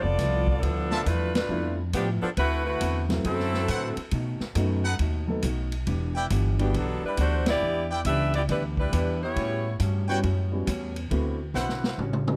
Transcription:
0.02 F1 B3 F4 A4 D5
0.17 C2 G2 F3 B3 E4, kick, snare, hi-hat pedal, ride
0.47 kick
0.61 D2 G2 F3 B3 D4 E4 A4, kick, ride
0.91 F4 B4 E5 A5, snare
1.05 E2 G2 F3 A3 B3 D4 E4 F4 B4, kick, hi-hat pedal, ride
1.35 A3 D4 F4 B4, snare, ride
1.49 F2 G2 F3 A3 B3 D4 E4
1.93 G2 A2 F3 B3 D4 E4 G4, kick, hi-hat pedal, ride
2.22 F3 B3 D4 A4, muted upright bass stroke
2.37 D2 D3 A3 C4 E4 F#4 B4 F#5, kick, ride
2.66 A3 E4 F#4 B4
2.80 E2 D3 C4 F#4 B4, kick, hi-hat pedal, ride
3.09 F#3 A3 B3 C4 E4, snare, ride
3.24 F#2 D3 F#3 C4 E4 F#4 A4 B4, kick, ride
3.40 snare
3.54 snare
3.68 A2 D3 C4 E4 F#4 B4 C5 F#5, kick, hi-hat pedal, ride
3.97 muted upright bass stroke, ride
4.11 B2 A3 D#4 F#4, kick, ride
4.40 muted upright bass stroke, snare
4.55 F#2 B2 F#3 A3 B3 D#4 F#4, kick, hi-hat pedal, ride
4.84 D#4 A4 B4 F#5
4.99 D#2 B2 A3 D#4 F#4, kick, ride
5.27 F#3 A3 B3 D#4 A4
5.42 B1 B2 A3 D#4 F#4, kick, hi-hat pedal, ride
5.72 ride
5.87 E1 E3 B3 D4 G4, kick, ride
6.15 E4 B4 D5 G5
6.30 G1 E3 B3 D4 G4, kick, hi-hat pedal, ride
6.59 E3 G3 B3 D4 E4 F#4 G4, ride
6.73 B1 E3 F#3 B3 D4 G4 A4, kick, ride
7.03 G3 D4 E4 B4, muted upright bass stroke
7.17 D2 E3 A3 B3 D4 F#4 G4 C5, kick, hi-hat pedal, ride
7.46 B3 E4 G4 D5, snare, ride
7.60 E2 E3 B3 D4 G4
7.90 E4 B4 D5 G5
8.04 C#2 E3 B3 D4 G4 B4 E5, kick, hi-hat pedal, ride
8.34 B3 E4 G4 D5, ride
8.48 D2 E3 G3 B3 D4 E4 G4 B4, kick, ride
8.77 G3 D4 E4 B4, kick
8.91 E2 E3 B3 D4 G4, kick, hi-hat pedal, ride
9.23 B3 E4 G4 C#5
9.36 A2 G3 C#4 F#4, kick, ride
9.80 G2 A2 G3 C#4 F#4, kick, hi-hat pedal, ride
10.08 G3 B3 C#4 E4 F#4 B4 C#5 G5
10.23 F#2 A2 G3 C#4 F#4, kick, ride
10.52 G3 B3 C#4 E4 F#4
10.66 E2 A2 G3 C#4 F#4, kick, hi-hat pedal, ride
10.96 ride
11.10 D2 D3 A3 B3 C4 E4 F#4 B4, kick, ride
11.54 B1 D3 C4 E4 F#4 B4 C5 F#5, snare, hi-hat pedal
11.69 snare
11.84 snare
11.98 A1 A2 G3 C#4 F#4, mid tom
12.13 mid tom
12.27 G3 B3 C#4 E4 F#4, mid tom

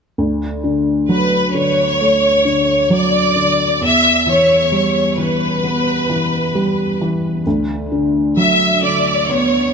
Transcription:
0.18 D2
0.64 D3
1.09 F#3 B4
1.54 D3 C#5
2.01 A3
2.45 D3
2.90 F#3 D5
3.35 D3
3.81 E2 E5
4.26 E3 C#5
4.72 G3
5.18 E3 B4
5.64 B3
6.09 E3
6.55 G3
7.01 E3
7.47 D2
7.92 D3
8.37 F#3 E5
8.82 D3 D5
9.29 B3 C#5

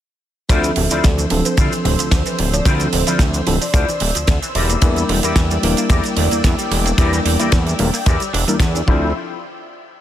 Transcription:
0.49 D2 C3 F3 C4 D4 E4 F4 A4 C5 D5 E5 E6, kick, closed hi-hat, ride, shaker
0.64 E3, closed hi-hat, shaker
0.76 D1 C3, open hi-hat
0.91 D2 F3 E4 F4 C5 D5, closed hi-hat, shaker
1.04 D2 C3, kick, snare, closed hi-hat, ride, shaker
1.18 E3, muted clean electric guitar stroke, closed hi-hat, shaker
1.30 D1 C3 F3 C4 D4 A4, open hi-hat
1.45 F3 C5, closed hi-hat, shaker
1.57 D2 C3 E4 F4 C5 D5, kick, closed hi-hat, ride, shaker
1.72 E3, closed hi-hat, shaker
1.84 D1 C3, muted clean electric guitar stroke, open hi-hat
1.99 D2 F3, muted clean electric guitar stroke, closed hi-hat, shaker
2.11 D2 C3, kick, snare, closed hi-hat, ride, shaker
2.26 E3, closed hi-hat, shaker
2.39 D1 C3, muted clean electric guitar stroke, open hi-hat
2.53 F3 D5, closed hi-hat, shaker
2.65 D2 C3 F3 C4 D4 E4 F4 A4 C5 D5, kick, closed hi-hat, ride, shaker
2.80 E3, closed hi-hat, shaker
2.93 D1 C3, open hi-hat
3.07 D2 F3 E4 F4 C5 D5, closed hi-hat, shaker
3.19 D2 C3, kick, snare, closed hi-hat, ride, shaker
3.34 E3, muted clean electric guitar stroke, closed hi-hat, shaker
3.46 D1 C3 F3 C4 D4 E4 A4, open hi-hat
3.61 F3 D5, open hi-hat, shaker
3.74 D2 C3 E4 F4 C5 D5, kick, closed hi-hat, ride, shaker
3.88 E3, closed hi-hat, shaker
4.00 D1 C3, muted clean electric guitar stroke, open hi-hat
4.15 D2 F3, muted clean electric guitar stroke, closed hi-hat, shaker
4.27 D2 C3, kick, snare, closed hi-hat, ride, shaker
4.42 E3, closed hi-hat, shaker
4.55 E1 D3 E4 G4 A#4 D5 G5, open hi-hat
4.69 A#3, closed hi-hat, shaker
4.81 E2 D3 G3 A#3 D4 E4 A#4, kick, closed hi-hat, ride, shaker
4.96 G3, closed hi-hat, shaker
5.09 E1 D3, open hi-hat
5.23 E2 A#3 E4 G4 A#4 D5, closed hi-hat, shaker
5.36 E2 D3, kick, snare, closed hi-hat, ride, shaker
5.50 G3, muted clean electric guitar stroke, closed hi-hat, shaker
5.62 E1 D3 G3 A#3 D4 E4 A#4, open hi-hat
5.77 A#3, closed hi-hat, shaker
5.89 E2 D3 E4 G4 A#4 D5, kick, closed hi-hat, ride, shaker
6.04 G3, closed hi-hat, shaker
6.17 E1 D3, muted clean electric guitar stroke, open hi-hat
6.31 E2 A#3, muted clean electric guitar stroke, closed hi-hat, shaker
6.44 E2 D3, kick, snare, closed hi-hat, ride, shaker
6.58 G3, closed hi-hat, shaker
6.71 E1 D3, muted clean electric guitar stroke, open hi-hat
6.85 A#3, closed hi-hat, shaker
6.97 E2 D3 G3 A#3 D4 E4 G4 A#4 D5, kick, closed hi-hat, ride, shaker
7.13 G3, closed hi-hat, shaker
7.25 E1 D3, open hi-hat
7.39 E2 A#3 E4 G4 A#4 D5, closed hi-hat, shaker
7.52 E2 D3, kick, snare, closed hi-hat, ride, shaker
7.67 G3, muted clean electric guitar stroke, closed hi-hat, shaker
7.79 E1 D3 G3 A#3 D4 E4 A#4, open hi-hat
7.93 A#3, open hi-hat, shaker
8.06 E2 D3 E4 G4 A#4 D5, kick, closed hi-hat, ride, shaker
8.20 G3, closed hi-hat, shaker
8.33 E1 D4, muted clean electric guitar stroke, open hi-hat
8.47 E2 G3 A#3 D4 E4 A#4, muted clean electric guitar stroke, closed hi-hat, shaker
8.60 E2 D3, kick, snare, closed hi-hat, ride, shaker
8.75 D4, closed hi-hat, shaker
8.86 D2 C3 F3 C4 D4 E4 F4 A4 C5, kick

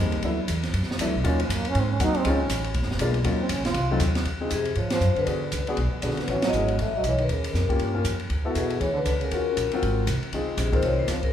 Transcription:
Already playing: C#3 F3 G3 A#3 C4 D#4
0.06 D#2
0.12 C#2, ride
0.23 D2 F#3 A3 B3 D4 E4, kick, ride
0.48 E2, kick, hi-hat pedal, ride
0.63 snare, ride
0.73 F#2, kick, ride
0.83 snare
0.91 snare
0.98 E2 F#3 A3 B3 D4 E4, kick, hi-hat pedal, ride
1.07 D2
1.15 B1
1.24 D#2 F#3 A#3 C#4 D#4 F4, kick, ride
1.40 F3, ride
1.49 F#2, kick, hi-hat pedal, ride
1.54 A#3
1.65 ride
1.69 C#4
1.75 G#2, kick, ride
1.79 C4
1.92 C#4
1.99 D#2 F#3 A#3 C4 D#4 F#4, kick, hi-hat pedal, ride
2.04 D#4
2.14 muted upright bass stroke, ride
2.18 C4
2.25 C#2 G#3 C4 C#4 D#4 F4, kick, ride
2.29 C#4
2.49 A1, kick, hi-hat pedal, ride
2.64 ride
2.74 A#1, kick, ride
2.83 G#1, snare
2.91 F1, snare
2.99 B1 G#3 A#3 B3 D4 F4, kick, hi-hat pedal, ride
3.14 ride
3.24 D#2 F#3 A#3 C#4 D#4 F4, kick, ride
3.41 C4
3.49 C#2 C#4, kick, hi-hat pedal, ride
3.60 A#1
3.65 F#1 F4, snare, ride
3.74 C2, kick, ride
3.91 F#3 A3 C4 D#4 F4
4.00 D#2, kick, hi-hat pedal, ride
4.15 snare, ride
4.25 C#2, kick, ride
4.41 C4 D#4 F4 G#4
4.50 F2 C3 G#4, kick, hi-hat pedal, ride
4.65 ride
4.75 G#2 F3 C#5, kick, ride
4.90 F3 C5, snare, ride
5.00 F#2, hi-hat pedal
5.16 D3 B4, muted upright bass stroke, ride
5.26 E2 B3 D4 F#4 G#4, kick, ride
5.52 C#2, kick, hi-hat pedal, ride
5.67 B3 D4 F#4 G#4, ride
5.77 B1, kick, ride
6.02 A#1 D3 B3 D4 F#4 G#4, kick, hi-hat pedal, ride
6.06 B4
6.11 snare
6.17 muted upright bass stroke, snare, ride
6.27 A1 E3 B3 C#4 E4 F#4 C#5, kick, ride
6.42 F#3, snare, ride
6.48 D#5
6.53 G#1 B3 C#4 E4 G#4, hi-hat pedal
6.68 ride
6.79 A1 A3 E5, kick, ride
6.96 F#3 D#5
7.04 B1 E3, kick, hi-hat pedal, ride
7.08 C#5
7.18 D#3, ride
7.23 B4
7.29 D#2 C#3 A#4, kick, ride
7.44 ride
7.54 F2, kick, snare, hi-hat pedal
7.69 A#3 C#4 F4 G4, kick, ride
7.79 G2, kick, ride
7.94 A#3 C#4 F4 A#4
8.04 F2, kick, hi-hat pedal, ride
8.20 ride
8.30 D2, kick, ride
8.45 B3 E4 F#4 A4
8.55 E2 B2 G#4, kick, hi-hat pedal, ride
8.70 ride
8.80 D2 E3 C#5, kick, ride
8.93 D3
8.97 B4
9.03 C#2 D3, kick, hi-hat pedal, ride
9.07 B4
9.19 C#3, ride
9.25 A#4
9.31 D#2 C#4 F4 F#4 A#4, kick, ride
9.57 A#1, kick, hi-hat pedal, ride
9.71 C4 F4 F#4 A#4, ride
9.82 G#1, kick, ride
10.07 C2, kick, hi-hat pedal, ride
10.23 muted upright bass stroke, ride
10.32 C#2 C4 D#4 F4 G#4, kick, ride
10.57 A#1 C3 G#4, kick, hi-hat pedal, ride
10.72 D#3 C4 D#4 F4 A#4 C5, kick, ride
10.82 C2 F3 C#5, kick, ride
10.99 D#3 C5
11.08 C#2 F3 C5, kick, snare, hi-hat pedal, ride
11.23 C#3 A#4, kick, ride

